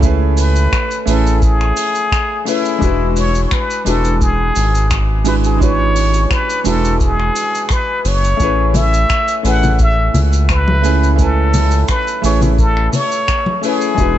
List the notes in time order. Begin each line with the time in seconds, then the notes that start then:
Already playing: C#2 E4 G#4 B4
0.00 A3 C#4 E4, kick, shaker
0.04 G#4 B4
0.37 B4, open hi-hat, shaker
0.56 shaker
0.73 finger snap, kick, shaker
0.91 shaker
1.06 A1 A3 C#4 E4 G#4 A4 B4, open hi-hat, shaker
1.27 shaker
1.42 G#4, kick, shaker
1.61 finger snap
1.77 open hi-hat, shaker
1.95 shaker
2.12 finger snap, kick, shaker
2.45 A3 C#4 E4 G#4 B4, open hi-hat, shaker
2.65 shaker
2.78 E1 G#3 D4 E4, kick, shaker
2.83 F#4 B4
3.16 C#5, open hi-hat, shaker
3.35 shaker
3.46 C#5
3.51 B4, finger snap, kick, shaker
3.70 shaker
3.85 E1 G#3 D4 E4 F#4 A4 B4, open hi-hat, shaker
4.04 shaker
4.21 G#4, kick, shaker
4.56 G#1, open hi-hat, shaker
4.75 shaker
4.91 finger snap, kick, shaker
5.24 G#3 D4 E4 F#4 B4, open hi-hat, shaker
5.44 G#4, shaker
5.57 G#3 D4 E4, kick
5.62 F#4 B4 C#5, shaker
5.96 open hi-hat, shaker
6.14 shaker
6.31 B4, finger snap, kick, shaker
6.50 shaker
6.64 E1 G#3 D4 E4 F#4 A4 B4, open hi-hat, shaker
6.85 shaker
7.00 G#4, kick, shaker
7.20 finger snap
7.36 open hi-hat, shaker
7.55 shaker
7.69 B4, finger snap, kick, shaker
8.05 F#1 C#5, open hi-hat, shaker
8.24 shaker
8.37 A1 A3 C#4 E4, kick, shaker
8.42 G#4 B4
8.74 E5, open hi-hat, high conga, low conga, shaker
8.94 shaker
9.10 finger snap, kick, shaker
9.28 shaker
9.43 A1 A3 C#4 E4 G#4 B4 F#5, open hi-hat, shaker
9.63 high conga, low conga, shaker
9.79 E5, kick, shaker
10.14 C#2, open hi-hat, low conga, shaker
10.33 shaker
10.49 B4, finger snap, kick, shaker
10.68 high conga
10.82 A3 C#4 E4 G#4 B4, open hi-hat, shaker
11.03 shaker
11.16 A3 C#4 E4, kick, shaker
11.21 A4 B4 G#5
11.54 open hi-hat, high conga, low conga, shaker
11.71 shaker
11.88 B4, finger snap, kick, shaker
12.07 shaker
12.22 A1 A3 C#4 E4 G#4 B4 C#5, open hi-hat, shaker
12.41 high conga, low conga, shaker
12.59 A4, kick, shaker
12.77 finger snap
12.93 C#5, open hi-hat, low conga, shaker
13.12 shaker
13.28 finger snap, kick, shaker
13.46 high conga
13.61 A3 C#4 E4 G#4 B4, open hi-hat, shaker
13.81 shaker
13.95 E1 G#3 D4 E4, kick, shaker
13.99 F#4 B4